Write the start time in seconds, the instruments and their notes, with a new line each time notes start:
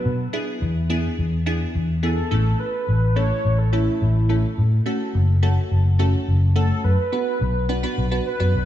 Already playing: synth stab F#3 B3 D4 F#4
0.05 fingered electric bass B2
0.33 synth stab B3 D4 E4 G#4
0.62 fingered electric bass E2
0.90 synth stab B3 D4 E4 G#4
1.18 fingered electric bass E2
1.46 synth stab B3 D4 E4 G#4
1.75 fingered electric bass E2
2.03 synth stab B3 D4 E4 G#4, soft synth lead A4
2.31 fingered electric bass A1, synth stab A3 C#4 E4 A4
2.60 soft synth lead B4
2.88 fingered electric bass A1
3.16 synth stab A3 C#4 E4 A4, soft synth lead C#5
3.45 fingered electric bass A1
3.58 soft synth lead A4
3.73 synth stab A3 C#4 E4 A4, soft synth lead E4
4.01 fingered electric bass A1
4.29 synth stab A3 C#4 E4 A4
4.58 fingered electric bass A2
4.86 synth stab A3 C#4 F#4 A4
5.14 fingered electric bass F#1
5.42 synth stab A3 C#4 F#4 A4
5.71 fingered electric bass F#1
5.99 synth stab A3 C#4 F#4 A4
6.28 fingered electric bass F#1
6.56 synth stab A3 C#4 F#4 A4, soft synth lead A4
6.84 fingered electric bass F#2, soft synth lead B4
7.12 synth stab B3 D4 F#4 B4
7.41 fingered electric bass B1
7.69 synth stab B3 D4 F#4 B4
7.83 synth stab B3 D4 F#4 B4
7.97 fingered electric bass B1
8.11 synth stab B3 D4 F#4 B4
8.26 soft synth lead B4
8.40 fingered electric bass F#2, synth stab B3 D4 F#4 B4
8.54 fingered electric bass B1